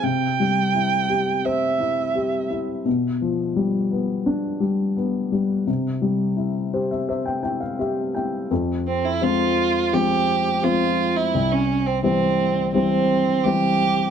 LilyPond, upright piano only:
<<
  \new Staff \with { instrumentName = "Upright piano" } { \time 4/4 \key f \minor \tempo 4 = 85 r1 | r1 | r4. c''16 e''16 e''16 g''16 g''16 f''16 e''8 g''8 | r1 |
r1 | }
  \new Staff \with { instrumentName = "Upright piano" } { \clef bass \time 4/4 \key f \minor c8 g8 e'8 g'8 c''8 e'8 g'8 e'8 | b,8 f8 g8 b8 d'8 g8 b8 g8 | c8 g8 e'8 g'8 c''8 e'8 g'8 e'8 | f,4 <f aes c'>4 <f aes c'>4 <f aes c'>4 |
c,4 <e g c'>4 <e g c'>4 <e g c'>4 | }
>>